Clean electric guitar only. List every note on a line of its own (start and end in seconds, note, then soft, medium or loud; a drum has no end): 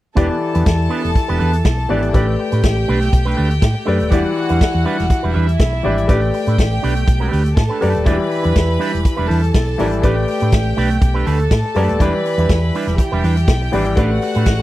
0.15 0.36 B3 medium
0.15 0.29 D4 medium
0.15 0.29 G4 loud
0.15 0.28 B4 loud
0.30 muted clean electric guitar stroke soft
0.41 muted clean electric guitar stroke soft
0.54 0.65 B3 soft
0.54 0.65 D4 soft
0.54 0.65 G4 soft
0.54 0.65 B4 medium
0.66 muted clean electric guitar stroke soft
0.79 muted clean electric guitar stroke soft
0.89 1.10 B3 medium
0.89 1.03 D4 medium
0.89 1.02 G4 medium
0.89 1.02 B4 medium
1.03 muted clean electric guitar stroke soft
1.15 muted clean electric guitar stroke soft
1.28 1.38 B3 medium
1.28 1.38 D4 medium
1.28 1.39 G4 medium
1.28 1.39 B4 medium
1.39 1.56 B3 medium
1.39 1.53 D4 medium
1.39 1.53 G4 medium
1.39 1.52 B4 medium
1.53 muted clean electric guitar stroke soft
1.65 muted clean electric guitar stroke soft
1.77 muted clean electric guitar stroke soft
1.89 2.09 B3 medium
1.89 2.02 D4 medium
1.89 2.02 G4 medium
1.89 2.01 B4 medium
2.02 muted clean electric guitar stroke soft
2.14 2.34 A3 medium
2.14 2.27 D4 medium
2.14 2.27 G4 medium
2.14 2.26 B4 medium
2.27 muted clean electric guitar stroke soft
2.39 muted clean electric guitar stroke soft
2.52 2.62 A3 soft
2.52 2.62 D4 soft
2.52 2.62 G4 soft
2.52 2.63 B4 soft
2.63 muted clean electric guitar stroke soft
2.77 muted clean electric guitar stroke soft
2.88 3.08 A3 medium
2.88 3.00 D4 medium
2.88 3.00 G4 medium
2.88 3.00 B4 loud
3.01 muted clean electric guitar stroke soft
3.12 muted clean electric guitar stroke soft
3.25 3.35 A3 medium
3.25 3.36 D4 medium
3.25 3.36 G4 medium
3.25 3.37 B4 medium
3.36 3.53 A3 medium
3.36 3.50 D4 medium
3.36 3.49 G4 medium
3.36 3.49 B4 medium
3.50 muted clean electric guitar stroke soft
3.62 muted clean electric guitar stroke soft
3.74 muted clean electric guitar stroke soft
3.85 4.06 A3 medium
3.85 3.99 D4 medium
3.85 3.98 G4 medium
3.85 3.98 B4 medium
3.99 muted clean electric guitar stroke soft
4.10 4.31 G3 medium
4.10 4.23 D4 medium
4.10 4.23 E4 medium
4.10 4.22 B4 medium
4.23 muted clean electric guitar stroke soft
4.36 muted clean electric guitar stroke soft
4.49 4.59 G3 soft
4.49 4.60 D4 medium
4.49 4.60 E4 medium
4.49 4.60 B4 medium
4.60 muted clean electric guitar stroke soft
4.74 muted clean electric guitar stroke soft
4.85 5.05 G3 medium
4.85 4.98 D4 medium
4.85 4.97 E4 medium
4.85 4.97 B4 medium
4.98 muted clean electric guitar stroke soft
5.10 muted clean electric guitar stroke soft
5.23 5.33 G3 medium
5.23 5.34 D4 medium
5.23 5.34 E4 medium
5.23 5.34 B4 medium
5.34 5.50 G3 medium
5.34 5.48 D4 medium
5.34 5.47 E4 medium
5.34 5.46 B4 medium
5.48 muted clean electric guitar stroke soft
5.59 muted clean electric guitar stroke soft
5.73 muted clean electric guitar stroke soft
5.84 6.04 G3 medium
5.84 5.97 D4 medium
5.84 5.96 E4 medium
5.84 5.96 B4 medium
5.97 muted clean electric guitar stroke soft
6.08 6.28 A3 medium
6.08 6.21 D4 medium
6.08 6.21 G4 loud
6.08 6.20 B4 medium
6.22 muted clean electric guitar stroke soft
6.33 muted clean electric guitar stroke soft
6.47 6.57 A3 soft
6.47 6.57 D4 soft
6.47 6.58 G4 medium
6.47 6.58 B4 medium
6.71 muted clean electric guitar stroke soft
6.82 7.02 A3 medium
6.82 6.95 D4 medium
6.82 6.94 G4 medium
6.82 6.94 B4 medium
6.95 muted clean electric guitar stroke soft
7.06 muted clean electric guitar stroke soft
7.20 7.30 A3 medium
7.20 7.30 D4 medium
7.20 7.31 G4 medium
7.20 7.31 B4 medium
7.31 7.47 A3 medium
7.31 7.44 D4 medium
7.31 7.44 G4 medium
7.31 7.43 B4 medium
7.44 muted clean electric guitar stroke soft
7.56 muted clean electric guitar stroke soft
7.69 7.80 A3 medium
7.69 7.80 D4 medium
7.69 7.80 G4 medium
7.69 7.81 B4 medium
7.81 8.02 A3 medium
7.81 7.93 D4 medium
7.81 7.93 G4 medium
7.81 7.93 B4 medium
7.94 muted clean electric guitar stroke soft
8.05 8.26 G3 medium
8.05 8.18 D4 medium
8.05 8.18 E4 medium
8.05 8.17 B4 medium
8.18 muted clean electric guitar stroke soft
8.29 muted clean electric guitar stroke soft
8.43 8.53 G3 soft
8.43 8.54 D4 soft
8.43 8.54 E4 medium
8.43 8.54 B4 medium
8.54 muted clean electric guitar stroke soft
8.68 muted clean electric guitar stroke soft
8.79 8.99 G3 medium
8.79 8.92 D4 loud
8.79 8.92 E4 loud
8.79 8.91 B4 loud
8.92 muted clean electric guitar stroke medium
9.03 muted clean electric guitar stroke soft
9.17 9.27 G3 medium
9.17 9.28 D4 medium
9.17 9.28 E4 medium
9.17 9.28 B4 medium
9.28 9.45 G3 medium
9.28 9.42 D4 medium
9.28 9.42 E4 medium
9.28 9.41 B4 medium
9.42 muted clean electric guitar stroke soft
9.53 muted clean electric guitar stroke soft
9.67 muted clean electric guitar stroke soft
9.79 9.99 G3 medium
9.79 9.92 D4 medium
9.79 9.91 E4 medium
9.79 9.91 B4 medium
9.92 muted clean electric guitar stroke soft
10.04 10.23 A3 medium
10.04 10.16 D4 medium
10.04 10.16 G4 medium
10.04 10.15 B4 loud
10.17 muted clean electric guitar stroke soft
10.28 muted clean electric guitar stroke soft
10.41 10.51 A3 soft
10.41 10.52 D4 soft
10.41 10.52 G4 medium
10.41 10.52 B4 medium
10.53 muted clean electric guitar stroke soft
10.66 muted clean electric guitar stroke soft
10.77 10.97 A3 loud
10.77 10.90 D4 loud
10.77 10.90 G4 medium
10.77 10.89 B4 loud
10.90 muted clean electric guitar stroke soft
11.01 muted clean electric guitar stroke soft
11.14 11.25 A3 medium
11.14 11.26 D4 medium
11.14 11.26 G4 medium
11.14 11.26 B4 medium
11.26 11.42 A3 medium
11.26 11.40 D4 medium
11.26 11.39 G4 medium
11.26 11.39 B4 medium
11.40 muted clean electric guitar stroke soft
11.52 muted clean electric guitar stroke soft
11.65 muted clean electric guitar stroke soft
11.75 11.96 A3 medium
11.75 11.89 D4 medium
11.75 11.88 G4 medium
11.75 11.88 B4 medium
11.89 muted clean electric guitar stroke soft
12.01 12.20 G3 medium
12.01 12.14 D4 medium
12.01 12.14 E4 medium
12.01 12.13 B4 medium
12.14 muted clean electric guitar stroke soft
12.26 muted clean electric guitar stroke soft
12.38 12.49 G3 soft
12.38 12.49 D4 medium
12.38 12.50 E4 medium
12.38 12.50 B4 medium
12.50 muted clean electric guitar stroke soft
12.64 muted clean electric guitar stroke soft
12.74 12.94 G3 medium
12.74 12.87 D4 medium
12.74 12.87 E4 medium
12.74 12.86 B4 medium
12.88 muted clean electric guitar stroke medium
12.99 muted clean electric guitar stroke soft
13.12 13.23 G3 medium
13.12 13.23 D4 medium
13.12 13.24 E4 medium
13.12 13.24 B4 medium
13.24 13.40 G3 medium
13.24 13.37 D4 medium
13.24 13.36 E4 medium
13.24 13.36 B4 medium
13.37 muted clean electric guitar stroke soft
13.48 muted clean electric guitar stroke soft
13.62 muted clean electric guitar stroke medium
13.73 13.93 G3 medium
13.73 13.86 D4 medium
13.73 13.86 E4 medium
13.73 13.85 B4 medium
13.86 muted clean electric guitar stroke medium
13.97 14.17 A3 loud
13.97 14.11 D4 loud
13.97 14.11 G4 loud
13.97 14.10 B4 loud
14.12 muted clean electric guitar stroke soft
14.23 muted clean electric guitar stroke soft
14.36 14.47 A3 medium
14.36 14.47 D4 medium
14.36 14.47 G4 medium
14.36 14.47 B4 medium